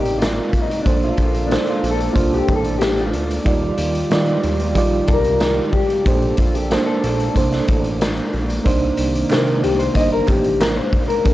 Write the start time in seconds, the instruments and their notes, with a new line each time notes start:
Already playing: analog synth bass A1, analog synth pad C3 A#3 D#4 D5, reed electric piano C4 D#4 A#4 D5, clean electric guitar G4
0.05 closed hi-hat
0.19 clean electric guitar F4, snare, closed hi-hat
0.53 kick, closed hi-hat
0.62 clean electric guitar D#4
0.71 closed hi-hat
0.83 analog synth bass A#1, reed electric piano A#3 D4 A4 C5, clean electric guitar D4, analog synth pad A4, kick, closed hi-hat
1.03 clean electric guitar F4, closed hi-hat
1.17 analog synth bass A#1, kick, closed hi-hat
1.26 clean electric guitar F4
1.34 closed hi-hat
1.47 reed electric piano A#3 D4 A4, clean electric guitar D4
1.51 reed electric piano C5, snare, closed hi-hat
1.66 clean electric guitar F4, closed hi-hat
1.83 analog synth bass A#1, closed hi-hat
1.91 clean electric guitar A4
2.00 closed hi-hat
2.13 analog synth bass C2, reed electric piano A#3 D4 A4 C5, clean electric guitar F4, kick, closed hi-hat
2.33 clean electric guitar G4, closed hi-hat
2.48 analog synth bass A1, kick, closed hi-hat
2.56 clean electric guitar A4
2.64 closed hi-hat
2.78 clean electric guitar G4, snare, closed hi-hat
2.97 clean electric guitar F4, closed hi-hat
3.13 analog synth bass D2, closed hi-hat
3.31 closed hi-hat
3.44 analog synth bass D#2, analog synth pad D#3 F4 G4, reed electric piano G3 D#4 F4 D5, kick, closed hi-hat
3.78 analog synth bass D#2, closed hi-hat
3.95 closed hi-hat
4.10 analog synth bass D#3, reed electric piano G3 D#4 F4 D5, snare, closed hi-hat
4.26 closed hi-hat
4.43 analog synth bass D#2, closed hi-hat
4.60 closed hi-hat
4.75 analog synth bass A#1, reed electric piano G3 D#4 F4 D5, kick, closed hi-hat
5.08 analog synth bass C2, clean electric guitar A#4, kick, closed hi-hat
5.24 closed hi-hat
5.40 snare, closed hi-hat
5.73 clean electric guitar G4, kick, open hi-hat
5.90 closed hi-hat
6.05 analog synth bass A#1, reed electric piano A#3 D4 A4 C5, analog synth pad A#3 A4, kick, closed hi-hat
6.22 closed hi-hat
6.37 analog synth bass A#1, clean electric guitar F4, kick, closed hi-hat
6.55 clean electric guitar G4, closed hi-hat
6.70 reed electric piano A#3 D4 A4 C5, snare, closed hi-hat
6.86 clean electric guitar A4
7.04 analog synth bass A#1, closed hi-hat
7.20 closed hi-hat
7.34 analog synth bass C2, reed electric piano A#3 D4 A4 C5, kick, closed hi-hat
7.52 snare, closed hi-hat
7.68 analog synth bass A1, kick, closed hi-hat
7.84 closed hi-hat
8.01 snare, closed hi-hat
8.17 closed hi-hat
8.33 analog synth bass A#1, open hi-hat
8.50 closed hi-hat
8.64 analog synth bass C2, analog synth pad C3 D#3, reed electric piano A#3 D4 D#4 C5, kick, closed hi-hat
8.97 analog synth bass C2, closed hi-hat
9.15 closed hi-hat
9.29 analog synth bass C3, reed electric piano A#3 D4 D#4 C5, clean electric guitar A#4, snare, clap, closed hi-hat
9.47 closed hi-hat
9.63 analog synth bass C2, clean electric guitar G4, closed hi-hat
9.79 clean electric guitar C5, closed hi-hat
9.94 analog synth bass G1, reed electric piano A#3 D4 D#4 C5, clean electric guitar D#5, kick, closed hi-hat
10.12 clean electric guitar A#4
10.27 analog synth bass A1, clean electric guitar G4, kick, clap, closed hi-hat
10.44 closed hi-hat
10.61 clean electric guitar A#4, snare, clap, closed hi-hat
10.76 clean electric guitar C5
10.93 kick, open hi-hat
11.08 clean electric guitar A#4, closed hi-hat
11.24 analog synth bass A#1, reed electric piano A#3 D4 A4 B4, analog synth pad A4, kick, closed hi-hat